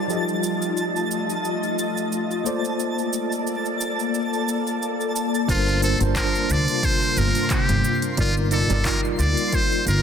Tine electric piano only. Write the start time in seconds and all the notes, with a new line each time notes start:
0.08 F3 F4 G4 A4 D#5
2.44 A#3 F4 A4 C5 D5
5.48 G3 D4 F4 A4 A#4 C5
5.81 G3 D4 F4 A4 A#4 C5
5.99 G3 D4 F4 A#4 C5 A5
8.17 G3 D#4 F4 A#4 D5
8.51 G3 D#4 F4 A#4 D5
8.69 G3 D#4 F4 A#4 D5